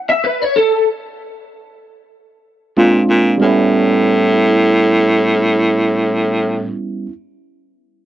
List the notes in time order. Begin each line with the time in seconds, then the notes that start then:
0.09 E5
0.24 B4
0.42 C#5
0.56 A4
2.77 A#2 G#3 C4 D4 F4
3.10 A#2
3.38 A2 G3 B3
3.42 C#4 E4